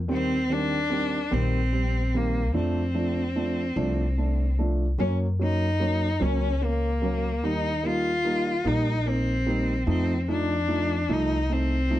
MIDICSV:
0, 0, Header, 1, 4, 480
1, 0, Start_track
1, 0, Tempo, 813008
1, 62, Time_signature, 6, 3, 24, 8
1, 7082, End_track
2, 0, Start_track
2, 0, Title_t, "Cello"
2, 0, Program_c, 0, 42
2, 74, Note_on_c, 0, 60, 100
2, 311, Note_on_c, 0, 62, 114
2, 320, Note_off_c, 0, 60, 0
2, 786, Note_on_c, 0, 60, 100
2, 795, Note_off_c, 0, 62, 0
2, 1279, Note_on_c, 0, 58, 88
2, 1288, Note_off_c, 0, 60, 0
2, 1510, Note_off_c, 0, 58, 0
2, 1513, Note_on_c, 0, 60, 84
2, 2685, Note_off_c, 0, 60, 0
2, 2949, Note_on_c, 0, 61, 84
2, 3056, Note_off_c, 0, 61, 0
2, 3203, Note_on_c, 0, 63, 100
2, 3672, Note_on_c, 0, 61, 91
2, 3681, Note_off_c, 0, 63, 0
2, 3918, Note_on_c, 0, 58, 92
2, 3927, Note_off_c, 0, 61, 0
2, 4396, Note_on_c, 0, 63, 103
2, 4405, Note_off_c, 0, 58, 0
2, 4644, Note_on_c, 0, 65, 118
2, 4653, Note_off_c, 0, 63, 0
2, 5119, Note_on_c, 0, 63, 104
2, 5128, Note_off_c, 0, 65, 0
2, 5362, Note_on_c, 0, 60, 105
2, 5371, Note_off_c, 0, 63, 0
2, 5833, Note_off_c, 0, 60, 0
2, 5839, Note_on_c, 0, 60, 96
2, 6055, Note_off_c, 0, 60, 0
2, 6089, Note_on_c, 0, 62, 102
2, 6569, Note_on_c, 0, 63, 98
2, 6578, Note_off_c, 0, 62, 0
2, 6803, Note_on_c, 0, 60, 98
2, 6811, Note_off_c, 0, 63, 0
2, 7082, Note_off_c, 0, 60, 0
2, 7082, End_track
3, 0, Start_track
3, 0, Title_t, "Grand piano"
3, 0, Program_c, 1, 0
3, 48, Note_on_c, 1, 51, 86
3, 50, Note_on_c, 1, 55, 80
3, 52, Note_on_c, 1, 60, 95
3, 208, Note_off_c, 1, 51, 0
3, 209, Note_off_c, 1, 55, 0
3, 210, Note_off_c, 1, 60, 0
3, 291, Note_on_c, 1, 51, 80
3, 296, Note_on_c, 1, 55, 63
3, 299, Note_on_c, 1, 60, 83
3, 450, Note_off_c, 1, 51, 0
3, 452, Note_off_c, 1, 55, 0
3, 454, Note_off_c, 1, 60, 0
3, 529, Note_on_c, 1, 51, 77
3, 532, Note_on_c, 1, 60, 77
3, 533, Note_on_c, 1, 55, 68
3, 689, Note_off_c, 1, 51, 0
3, 690, Note_off_c, 1, 60, 0
3, 691, Note_off_c, 1, 55, 0
3, 773, Note_on_c, 1, 51, 86
3, 774, Note_on_c, 1, 55, 78
3, 776, Note_on_c, 1, 60, 97
3, 931, Note_off_c, 1, 51, 0
3, 932, Note_off_c, 1, 55, 0
3, 932, Note_off_c, 1, 60, 0
3, 1017, Note_on_c, 1, 55, 63
3, 1021, Note_on_c, 1, 60, 73
3, 1173, Note_off_c, 1, 55, 0
3, 1175, Note_off_c, 1, 60, 0
3, 1263, Note_on_c, 1, 55, 63
3, 1265, Note_on_c, 1, 51, 69
3, 1268, Note_on_c, 1, 60, 81
3, 1416, Note_off_c, 1, 55, 0
3, 1417, Note_off_c, 1, 51, 0
3, 1418, Note_off_c, 1, 60, 0
3, 1499, Note_on_c, 1, 53, 79
3, 1502, Note_on_c, 1, 62, 93
3, 1504, Note_on_c, 1, 57, 77
3, 1654, Note_off_c, 1, 53, 0
3, 1656, Note_off_c, 1, 57, 0
3, 1656, Note_off_c, 1, 62, 0
3, 1738, Note_on_c, 1, 53, 74
3, 1738, Note_on_c, 1, 57, 63
3, 1743, Note_on_c, 1, 62, 80
3, 1894, Note_off_c, 1, 53, 0
3, 1894, Note_off_c, 1, 57, 0
3, 1896, Note_off_c, 1, 62, 0
3, 1980, Note_on_c, 1, 53, 71
3, 1984, Note_on_c, 1, 57, 63
3, 1984, Note_on_c, 1, 62, 76
3, 2135, Note_off_c, 1, 53, 0
3, 2137, Note_off_c, 1, 57, 0
3, 2137, Note_off_c, 1, 62, 0
3, 2219, Note_on_c, 1, 53, 83
3, 2221, Note_on_c, 1, 57, 72
3, 2223, Note_on_c, 1, 62, 92
3, 2374, Note_off_c, 1, 53, 0
3, 2376, Note_off_c, 1, 57, 0
3, 2376, Note_off_c, 1, 62, 0
3, 2467, Note_on_c, 1, 57, 57
3, 2471, Note_on_c, 1, 62, 65
3, 2619, Note_off_c, 1, 57, 0
3, 2621, Note_off_c, 1, 62, 0
3, 2707, Note_on_c, 1, 57, 62
3, 2711, Note_on_c, 1, 53, 70
3, 2711, Note_on_c, 1, 62, 73
3, 2858, Note_off_c, 1, 57, 0
3, 2861, Note_off_c, 1, 53, 0
3, 2861, Note_off_c, 1, 62, 0
3, 2944, Note_on_c, 1, 54, 83
3, 2944, Note_on_c, 1, 58, 75
3, 2948, Note_on_c, 1, 61, 94
3, 3097, Note_off_c, 1, 54, 0
3, 3097, Note_off_c, 1, 58, 0
3, 3099, Note_off_c, 1, 61, 0
3, 3184, Note_on_c, 1, 54, 70
3, 3188, Note_on_c, 1, 58, 63
3, 3191, Note_on_c, 1, 61, 77
3, 3337, Note_off_c, 1, 54, 0
3, 3339, Note_off_c, 1, 58, 0
3, 3341, Note_off_c, 1, 61, 0
3, 3424, Note_on_c, 1, 54, 72
3, 3424, Note_on_c, 1, 58, 67
3, 3425, Note_on_c, 1, 61, 73
3, 3577, Note_off_c, 1, 54, 0
3, 3577, Note_off_c, 1, 58, 0
3, 3577, Note_off_c, 1, 61, 0
3, 3659, Note_on_c, 1, 54, 90
3, 3660, Note_on_c, 1, 58, 80
3, 3664, Note_on_c, 1, 61, 94
3, 3815, Note_off_c, 1, 54, 0
3, 3815, Note_off_c, 1, 58, 0
3, 3817, Note_off_c, 1, 61, 0
3, 3906, Note_on_c, 1, 58, 65
3, 3910, Note_on_c, 1, 61, 64
3, 4058, Note_off_c, 1, 58, 0
3, 4060, Note_off_c, 1, 61, 0
3, 4144, Note_on_c, 1, 54, 72
3, 4148, Note_on_c, 1, 58, 68
3, 4149, Note_on_c, 1, 61, 76
3, 4297, Note_off_c, 1, 54, 0
3, 4299, Note_off_c, 1, 58, 0
3, 4299, Note_off_c, 1, 61, 0
3, 4389, Note_on_c, 1, 58, 75
3, 4391, Note_on_c, 1, 55, 81
3, 4392, Note_on_c, 1, 63, 92
3, 4540, Note_off_c, 1, 58, 0
3, 4541, Note_off_c, 1, 55, 0
3, 4541, Note_off_c, 1, 63, 0
3, 4625, Note_on_c, 1, 58, 68
3, 4626, Note_on_c, 1, 55, 70
3, 4630, Note_on_c, 1, 63, 80
3, 4778, Note_off_c, 1, 55, 0
3, 4778, Note_off_c, 1, 58, 0
3, 4780, Note_off_c, 1, 63, 0
3, 4865, Note_on_c, 1, 55, 72
3, 4869, Note_on_c, 1, 58, 70
3, 4869, Note_on_c, 1, 63, 83
3, 5018, Note_off_c, 1, 55, 0
3, 5019, Note_off_c, 1, 63, 0
3, 5020, Note_off_c, 1, 58, 0
3, 5102, Note_on_c, 1, 55, 82
3, 5105, Note_on_c, 1, 58, 82
3, 5109, Note_on_c, 1, 63, 99
3, 5256, Note_off_c, 1, 55, 0
3, 5258, Note_off_c, 1, 58, 0
3, 5259, Note_off_c, 1, 63, 0
3, 5348, Note_on_c, 1, 58, 67
3, 5351, Note_on_c, 1, 63, 77
3, 5499, Note_off_c, 1, 58, 0
3, 5501, Note_off_c, 1, 63, 0
3, 5586, Note_on_c, 1, 55, 74
3, 5588, Note_on_c, 1, 58, 65
3, 5592, Note_on_c, 1, 63, 82
3, 5738, Note_off_c, 1, 55, 0
3, 5739, Note_off_c, 1, 58, 0
3, 5741, Note_off_c, 1, 63, 0
3, 5825, Note_on_c, 1, 53, 85
3, 5825, Note_on_c, 1, 57, 81
3, 5829, Note_on_c, 1, 63, 101
3, 5977, Note_off_c, 1, 57, 0
3, 5978, Note_off_c, 1, 53, 0
3, 5979, Note_off_c, 1, 63, 0
3, 6071, Note_on_c, 1, 53, 75
3, 6071, Note_on_c, 1, 57, 66
3, 6074, Note_on_c, 1, 63, 83
3, 6220, Note_off_c, 1, 53, 0
3, 6220, Note_off_c, 1, 57, 0
3, 6222, Note_off_c, 1, 63, 0
3, 6304, Note_on_c, 1, 53, 73
3, 6308, Note_on_c, 1, 57, 64
3, 6309, Note_on_c, 1, 63, 82
3, 6457, Note_off_c, 1, 53, 0
3, 6459, Note_off_c, 1, 57, 0
3, 6459, Note_off_c, 1, 63, 0
3, 6547, Note_on_c, 1, 53, 89
3, 6548, Note_on_c, 1, 57, 83
3, 6550, Note_on_c, 1, 63, 99
3, 6698, Note_off_c, 1, 53, 0
3, 6699, Note_off_c, 1, 57, 0
3, 6700, Note_off_c, 1, 63, 0
3, 6786, Note_on_c, 1, 57, 65
3, 6792, Note_on_c, 1, 63, 73
3, 6938, Note_off_c, 1, 57, 0
3, 6940, Note_off_c, 1, 63, 0
3, 7025, Note_on_c, 1, 53, 71
3, 7030, Note_on_c, 1, 63, 79
3, 7031, Note_on_c, 1, 57, 71
3, 7082, Note_off_c, 1, 53, 0
3, 7082, Note_off_c, 1, 57, 0
3, 7082, Note_off_c, 1, 63, 0
3, 7082, End_track
4, 0, Start_track
4, 0, Title_t, "Upright bass"
4, 0, Program_c, 2, 32
4, 51, Note_on_c, 2, 39, 98
4, 754, Note_off_c, 2, 39, 0
4, 779, Note_on_c, 2, 34, 88
4, 1499, Note_off_c, 2, 34, 0
4, 1499, Note_on_c, 2, 41, 96
4, 2198, Note_off_c, 2, 41, 0
4, 2221, Note_on_c, 2, 36, 90
4, 2919, Note_off_c, 2, 36, 0
4, 2942, Note_on_c, 2, 42, 84
4, 3640, Note_off_c, 2, 42, 0
4, 3665, Note_on_c, 2, 37, 84
4, 4386, Note_off_c, 2, 37, 0
4, 4386, Note_on_c, 2, 39, 89
4, 5082, Note_off_c, 2, 39, 0
4, 5107, Note_on_c, 2, 34, 82
4, 5802, Note_off_c, 2, 34, 0
4, 5828, Note_on_c, 2, 41, 93
4, 6522, Note_off_c, 2, 41, 0
4, 6546, Note_on_c, 2, 36, 81
4, 7082, Note_off_c, 2, 36, 0
4, 7082, End_track
0, 0, End_of_file